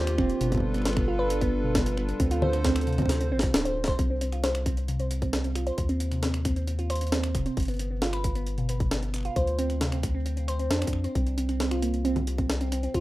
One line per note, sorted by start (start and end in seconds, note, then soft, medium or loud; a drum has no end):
0.00 0.20 D#2 loud
0.00 0.39 D#3 medium
0.00 0.37 A#3 medium
0.00 0.37 D4 medium
0.00 3.95 F4 medium
0.00 0.39 G4 medium
0.07 finger snap medium
0.07 closed hi-hat soft
0.18 0.33 D#1 medium
0.18 0.29 C4 loud
0.18 finger snap medium
0.18 kick loud
0.30 closed hi-hat soft
0.41 2.14 G1 loud
0.41 0.50 B2 medium
0.41 2.18 G3 medium
0.41 3.95 D4 medium
0.41 2.18 A4 medium
0.41 2.18 B4 medium
0.41 closed hi-hat medium
0.52 0.61 B3 medium
0.52 kick medium
0.52 closed hi-hat soft
0.55 kick medium
0.58 kick medium
0.60 kick soft
0.74 0.84 B3 medium
0.74 finger snap soft
0.74 closed hi-hat soft
0.78 finger snap soft
0.82 finger snap soft
0.85 0.91 B3 medium
0.85 finger snap soft
0.85 snare loud
0.85 closed hi-hat medium
0.89 finger snap soft
0.93 finger snap soft
0.97 1.02 B3 medium
0.97 finger snap medium
0.97 kick loud
1.08 1.17 F4 loud
1.19 1.28 B4 loud
1.30 closed hi-hat medium
1.41 1.52 B3 loud
1.41 kick loud
1.41 closed hi-hat soft
1.64 1.73 B2 medium
1.75 1.84 B3 medium
1.75 kick loud
1.75 snare loud
1.75 closed hi-hat medium
1.86 closed hi-hat medium
1.97 2.07 B3 medium
1.97 finger snap medium
2.09 2.14 B3 medium
2.09 closed hi-hat soft
2.20 3.33 D2 loud
2.20 3.97 D3 medium
2.20 2.25 C4 medium
2.20 3.97 A4 medium
2.20 3.97 C5 medium
2.20 kick loud
2.20 closed hi-hat medium
2.31 2.40 F4 loud
2.31 closed hi-hat medium
2.42 2.51 C5 loud
2.42 low conga medium
2.53 finger snap soft
2.53 closed hi-hat soft
2.65 2.75 C4 loud
2.65 kick loud
2.65 snare loud
2.65 closed hi-hat medium
2.76 finger snap medium
2.76 closed hi-hat soft
2.81 closed hi-hat soft
2.87 2.96 C3 medium
2.87 closed hi-hat soft
2.93 closed hi-hat soft
2.98 3.07 C4 medium
2.98 kick soft
2.98 closed hi-hat soft
2.98 low conga medium
3.02 kick medium
3.06 kick medium
3.06 snare medium
3.06 closed hi-hat medium
3.21 3.31 C4 medium
3.21 closed hi-hat medium
3.32 3.46 A1 medium
3.32 3.41 C4 loud
3.39 3.52 C4 medium
3.39 kick loud
3.39 snare medium
3.39 closed hi-hat soft
3.54 3.93 D1 medium
3.54 3.65 D4 medium
3.54 snare medium
3.54 snare loud
3.54 closed hi-hat medium
3.65 3.74 C5 medium
3.65 closed hi-hat medium
3.84 3.93 C5 loud
3.84 kick loud
3.84 snare loud
3.99 5.72 C2 medium
3.99 4.09 C4 medium
3.99 kick loud
3.99 closed hi-hat medium
4.10 4.15 C4 medium
4.21 4.27 C4 medium
4.21 closed hi-hat medium
4.32 4.41 F4 loud
4.32 finger snap soft
4.32 closed hi-hat soft
4.44 4.53 C5 loud
4.44 snare loud
4.44 closed hi-hat medium
4.55 finger snap medium
4.55 closed hi-hat soft
4.66 4.77 C4 loud
4.66 kick loud
4.66 closed hi-hat medium
4.77 closed hi-hat soft
4.88 4.97 C3 medium
4.88 closed hi-hat medium
5.00 5.09 C4 medium
5.00 closed hi-hat soft
5.11 closed hi-hat medium
5.22 5.32 C4 medium
5.22 kick loud
5.22 closed hi-hat soft
5.33 5.39 C4 medium
5.33 snare loud
5.33 closed hi-hat medium
5.44 5.50 C4 medium
5.44 closed hi-hat soft
5.55 5.65 F4 medium
5.55 finger snap soft
5.55 closed hi-hat medium
5.67 5.76 C5 loud
5.67 closed hi-hat soft
5.78 7.36 D#2 loud
5.78 kick loud
5.78 closed hi-hat medium
5.89 6.00 C4 loud
5.89 closed hi-hat soft
6.00 closed hi-hat medium
6.11 6.21 C3 medium
6.11 finger snap soft
6.11 closed hi-hat soft
6.23 6.32 C4 medium
6.23 snare loud
6.23 closed hi-hat medium
6.34 finger snap medium
6.34 closed hi-hat soft
6.45 6.55 C4 medium
6.45 finger snap medium
6.45 kick loud
6.45 closed hi-hat medium
6.56 6.62 C4 medium
6.56 closed hi-hat soft
6.67 6.73 C4 medium
6.67 closed hi-hat medium
6.79 6.88 F4 loud
6.79 closed hi-hat soft
6.90 6.99 C5 loud
6.90 finger snap soft
6.90 closed hi-hat medium
6.96 closed hi-hat medium
7.01 closed hi-hat medium
7.07 closed hi-hat soft
7.12 7.23 C4 medium
7.12 snare loud
7.12 closed hi-hat medium
7.24 finger snap medium
7.24 closed hi-hat soft
7.35 7.49 D#1 medium
7.35 7.44 C3 medium
7.35 finger snap soft
7.35 kick medium
7.35 closed hi-hat medium
7.46 7.55 C4 medium
7.46 closed hi-hat soft
7.57 9.30 G1 medium
7.57 kick loud
7.57 closed hi-hat medium
7.60 closed hi-hat soft
7.63 closed hi-hat soft
7.65 closed hi-hat soft
7.68 7.78 B3 medium
7.68 closed hi-hat soft
7.71 closed hi-hat soft
7.74 closed hi-hat soft
7.77 closed hi-hat soft
7.79 7.85 B3 medium
7.79 closed hi-hat medium
7.91 7.96 B3 medium
8.02 8.11 F4 loud
8.02 finger snap soft
8.02 snare loud
8.02 closed hi-hat soft
8.13 8.22 B4 loud
8.13 finger snap medium
8.13 closed hi-hat soft
8.24 kick loud
8.24 closed hi-hat medium
8.35 8.46 B3 loud
8.35 closed hi-hat soft
8.47 closed hi-hat medium
8.58 8.67 B2 medium
8.58 closed hi-hat soft
8.69 8.78 B3 medium
8.69 closed hi-hat medium
8.80 kick loud
8.80 closed hi-hat soft
8.91 9.01 B3 medium
8.91 snare loud
8.91 closed hi-hat medium
9.03 9.08 B3 medium
9.03 closed hi-hat soft
9.14 9.19 B3 medium
9.14 finger snap soft
9.14 closed hi-hat medium
9.16 finger snap soft
9.18 finger snap soft
9.21 finger snap soft
9.23 9.34 F4 loud
9.23 finger snap soft
9.23 closed hi-hat soft
9.36 10.70 D2 medium
9.36 9.45 C5 loud
9.36 kick loud
9.36 closed hi-hat medium
9.47 closed hi-hat soft
9.59 9.69 C4 loud
9.59 closed hi-hat medium
9.70 finger snap soft
9.70 closed hi-hat soft
9.81 9.90 C3 medium
9.81 snare loud
9.81 closed hi-hat medium
9.92 10.01 C4 medium
9.92 finger snap medium
9.92 closed hi-hat soft
10.03 finger snap medium
10.03 kick loud
10.03 closed hi-hat medium
10.14 10.24 C4 medium
10.26 10.31 C4 medium
10.26 closed hi-hat medium
10.37 10.42 C4 medium
10.37 closed hi-hat soft
10.48 10.57 C5 loud
10.48 finger snap soft
10.48 closed hi-hat medium
10.59 10.70 C4 medium
10.59 closed hi-hat soft
10.70 10.85 F2 loud
10.70 10.79 D4 loud
10.70 snare loud
10.70 closed hi-hat medium
10.82 10.92 C4 medium
10.82 finger snap medium
10.82 closed hi-hat soft
10.87 kick medium
10.87 closed hi-hat medium
10.93 11.08 F2 medium
10.93 finger snap soft
11.04 11.13 C4 medium
11.04 closed hi-hat soft
11.15 12.88 C2 medium
11.15 11.24 C4 medium
11.15 kick loud
11.15 closed hi-hat medium
11.27 closed hi-hat soft
11.38 11.48 C4 medium
11.38 closed hi-hat medium
11.49 11.54 C4 medium
11.49 finger snap soft
11.49 closed hi-hat soft
11.60 11.65 C4 medium
11.60 snare loud
11.60 closed hi-hat medium
11.71 11.80 F4 medium
11.71 finger snap medium
11.71 closed hi-hat soft
11.82 11.88 A#3 medium
11.82 closed hi-hat medium
11.94 closed hi-hat soft
12.05 12.15 C4 loud
12.05 closed hi-hat medium
12.16 closed hi-hat soft
12.16 low conga medium
12.27 12.36 C3 medium
12.27 closed hi-hat medium
12.38 12.47 C4 medium
12.38 kick loud
12.38 closed hi-hat soft
12.50 snare loud
12.50 closed hi-hat medium
12.61 12.71 C4 medium
12.61 closed hi-hat soft
12.72 12.77 C4 medium
12.72 finger snap soft
12.72 closed hi-hat medium
12.83 12.89 C4 medium
12.83 closed hi-hat soft
12.94 13.00 D#2 medium
12.94 13.00 F4 loud
12.94 kick loud
12.94 closed hi-hat medium